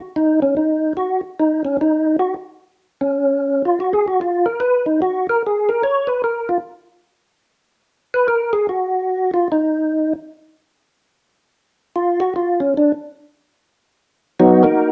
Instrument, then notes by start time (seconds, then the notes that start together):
tonewheel organ
0.16 D#4
0.42 C#4
0.57 D#4
0.97 F#4
1.40 D#4
1.65 C#4
1.81 D#4
2.19 F#4
3.01 C#4
3.65 F4
3.80 F#4
3.93 G#4
4.08 F#4
4.21 F4
4.46 A#4
4.60 B4
4.86 D#4
5.02 F#4
5.29 A#4
5.46 G#4
5.69 A#4
5.83 C#5
6.07 B4
6.24 A#4
6.49 F4
8.14 B4
8.28 A#4
8.53 G#4
8.69 F#4
9.34 F4
9.52 D#4
11.96 F4
12.20 F#4
12.36 F4
12.60 C#4
12.77 D4
14.40 F#3 B3 D#4 F#4
14.63 A#3 D#4 F#4 A#4